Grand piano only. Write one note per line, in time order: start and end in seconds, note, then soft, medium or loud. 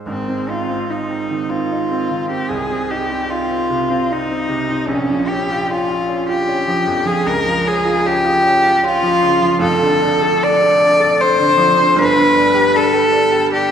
0.00 0.10 C5 soft
0.06 2.46 G#1 soft
0.06 2.46 G#2 soft
0.28 0.61 C4 soft
0.49 0.82 D#4 soft
0.69 1.02 C4 soft
0.89 1.22 D#4 soft
1.09 1.42 C4 soft
1.30 1.63 D#3 soft
1.50 1.82 C4 soft
1.71 2.03 D#4 soft
1.91 2.23 C4 soft
2.10 2.42 D#3 soft
2.30 2.50 C4 soft
2.50 4.86 C2 soft
2.70 3.02 C4 soft
2.90 3.22 D#4 soft
3.10 3.42 C4 soft
3.29 3.62 D#4 soft
3.50 3.83 C4 soft
3.70 4.03 C3 soft
3.90 4.23 C4 soft
4.11 4.43 D#4 soft
4.31 4.62 C4 soft
4.49 4.81 C3 soft
4.69 4.89 C4 soft
4.88 7.22 A#1 medium
5.09 5.41 F3 soft
5.30 5.62 C#4 soft
5.50 5.82 F4 medium
5.70 6.02 C#4 soft
5.89 6.21 F4 soft
6.09 6.40 C#4 soft
6.29 6.60 F4 medium
6.49 6.80 C#4 medium
6.68 6.99 F3 soft
6.87 7.19 F2 medium
7.06 7.26 F3 medium
7.26 9.58 C#2 medium
7.46 7.78 F3 medium
7.65 7.98 C#4 medium
7.85 8.18 F4 medium
8.05 8.37 C#4 soft
8.24 8.57 F4 soft
8.43 8.76 C#4 medium
8.63 8.95 F4 medium
8.83 9.15 C#4 medium
9.03 9.35 F3 soft
9.22 9.54 C#3 medium
9.42 9.62 F3 medium
9.59 11.94 F1 medium
9.59 11.95 F2 medium
9.81 10.14 D3 medium
10.02 10.35 D4 medium
10.22 10.55 A4 medium
10.42 10.74 D4 medium
10.62 10.93 A4 medium
10.81 11.12 D4 medium
11.00 11.32 A4 medium
11.19 11.51 D4 medium
11.38 11.71 D3 soft
11.57 11.90 F3 medium
11.77 11.98 D3 medium
11.96 13.71 G1 medium
11.96 13.71 G2 medium
12.16 12.48 D3 medium
12.36 12.68 D4 medium
12.55 12.87 G4 medium
12.73 13.06 D4 medium
12.93 13.26 G4 medium
13.12 13.45 D4 medium
13.32 13.64 G4 medium
13.52 13.71 D4 medium